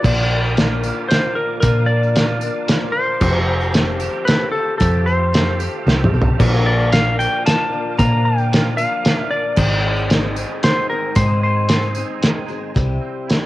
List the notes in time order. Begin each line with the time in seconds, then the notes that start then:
Already playing: D5
0.02 A#1 A#2 D3 F3 A#3 D4 F4 A#4 D5 F5 D6, kick, crash, tambourine
0.06 D4 F4
0.30 A#3 D4 F4
0.44 tambourine
0.57 F3 A#3 D4 F4 A#4, snare, closed hi-hat
0.83 F3 A#3 D4 F4 A#4, tambourine
1.08 A#2 F3 A#3 D4 C5, snare, closed hi-hat
1.13 F4
1.35 A#4
1.60 A#2 D3 F3 A#3 D4 A#4, kick, closed hi-hat, tambourine
1.65 F4 A#4
1.86 D4 F4 D5
1.91 A#3
2.03 tambourine
2.14 F3 A#3 D4 F4, snare, closed hi-hat
2.19 A#4
2.41 F3 A#3 D4 F4 A#4, tambourine
2.66 A#2 F3 A#3 D4 F4, snare, closed hi-hat
2.71 A#4
2.92 C5
3.18 F1 F3 A3 C4 F4 G4 A4 C5 F5 A5, kick, tambourine, crash
3.46 A3 C4 G4
3.60 tambourine
3.72 F3 A3 C4 G4 A4, snare, closed hi-hat
3.80 A#4
3.99 A3 C4 G4, tambourine
4.25 F3 A3 C4 A4 B4, snare, closed hi-hat
4.29 G4
4.52 C4 G4 A4
4.78 F2 F3 A3 C4 A4, kick, closed hi-hat, tambourine
4.82 G4
5.05 A3 C4 G4 C5, tambourine
5.32 F3 A3 C4 G4 A4, snare, closed hi-hat, tambourine
5.58 A3 C4 G4 A4, tambourine
5.85 C2 F3 A3 C4 G4 A4, snare, tambourine
6.04 mid tom
6.14 B1 C4 G4 A4
6.22 floor tom
6.38 A#1 A#2 D3 F3 A#3 D4 F4 A#4 D5 D6, kick, tambourine, crash
6.65 A#3 D4 F4 D5
6.80 tambourine
6.92 F3 A#3 D4 F4 A#4 F5, snare, closed hi-hat
7.18 F3 A#3 D4 F4 A#4 G5, tambourine
7.44 A#2 F3 A#3 D4 F4 A#4 A5, snare, closed hi-hat
7.72 F3 A#3 D4 A#4
7.98 A#2 D3 F3 A#3 D4 F4 A#4 A#5, kick, closed hi-hat, tambourine
8.24 A#3 D4 F4 G5
8.38 tambourine
8.50 F3 A#3 D4 F4 A#4, snare, closed hi-hat
8.77 F3 A#3 D4 F4 A#4 F5, tambourine
9.03 A#2 F3 A#3 D4 F4 A#4, snare, closed hi-hat
9.17 E5
9.31 D5
9.56 G#1 G#2 D#3 G#3 C4 D#4 G#4 C5 G#5, kick, crash, tambourine
9.83 G#3 C4 D#4 G#4
9.96 tambourine
10.10 G#3 C4 D#4 G#4, snare, closed hi-hat
10.35 G#3 C4 D#4 G#4, tambourine
10.62 G#2 D#3 G#3 C4 D#4 G#4 C5, snare, closed hi-hat
10.90 G#3 C4 D#4 G#4 A#4
11.14 G#2 D#3 G#3 C4 D#4 G#4 C5, kick, closed hi-hat, tambourine
11.40 G#3 C4 D#4 G#4 C5
11.67 G#3 C4 D#4 G#4, snare, closed hi-hat
11.82 tambourine
11.94 G#3 C4 D#4 G#4, tambourine
12.19 G#2 D#3 G#3 C4 D#4 G#4, closed hi-hat
12.23 snare
12.48 G#3 C4 D#4 G#4, tambourine
12.74 C2 C3 G3 C4 E4 G4, kick, closed hi-hat
13.00 C4
13.27 G3 C4 E4, snare, closed hi-hat
13.31 E4 G4